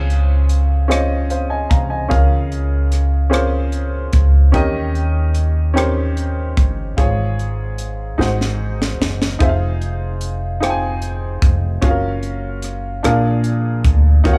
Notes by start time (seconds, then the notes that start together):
Already playing: C#2 C#3 C#4 F4 G#4 C5 F5
0.10 closed hi-hat
0.49 closed hi-hat
0.88 C#4 F4 G#4 C5 D#5, cross-stick, closed hi-hat
1.30 C5 F5, closed hi-hat
1.50 D#5 G#5
1.70 C2 F5 A#5, kick, closed hi-hat
1.90 D#5 G#5
2.08 C#2 C#3 C#4 F4 G#4 A#4 F5, kick, closed hi-hat
2.52 closed hi-hat
2.92 cross-stick, closed hi-hat
3.30 C#4 F4 G#4 A#4 C5, closed hi-hat
3.34 cross-stick
3.72 closed hi-hat
4.13 C#2, kick, closed hi-hat
4.52 D#2 D#3 C#4 D#4 G4 A#4 D#5, kick, closed hi-hat
4.95 closed hi-hat
5.35 closed hi-hat
5.74 C#4 D#4 G4 A#4 C5, closed hi-hat
5.78 cross-stick
6.17 closed hi-hat
6.57 G1, kick, closed hi-hat
6.97 G#1 G#2 F4 G#4 C#5, kick, closed hi-hat
7.39 closed hi-hat
7.78 closed hi-hat
8.18 G#1 G#2 D#4 F#4 G#4 C5 F#5, snare
8.41 snare
8.82 snare
9.01 F#1, snare
9.22 snare
9.39 F1 D#4 F4 G#4 C5 E5, kick, closed hi-hat
9.49 F5
9.81 closed hi-hat
10.21 closed hi-hat
10.60 D#4 F4 G#4 C5 G5, cross-stick, closed hi-hat
10.70 G#5
11.02 closed hi-hat
11.42 F1, kick, closed hi-hat
11.82 F#1 C#4 F4 F#4 G#4 F5, kick, closed hi-hat
11.91 A#4
12.23 closed hi-hat
12.62 cross-stick, closed hi-hat
13.03 A#1 A#2 D4 F4 G#4 A#4 F5, cross-stick, closed hi-hat
13.44 closed hi-hat
13.85 D2, kick, closed hi-hat
14.24 D#2 D#3 D#4 F#4 A#4 C#5 F5, kick, closed hi-hat
14.33 F#5